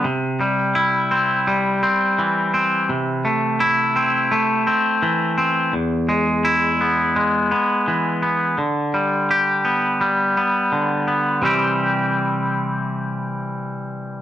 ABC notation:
X:1
M:4/4
L:1/8
Q:1/4=84
K:C
V:1 name="Clean electric guitar"
C, G, E C G, C E, C | C, A, E C A, C E, C | E,, ^G, E B, G, B, E, B, | D, G, G B, G, B, D, B, |
[C,E,G,CG]8 |]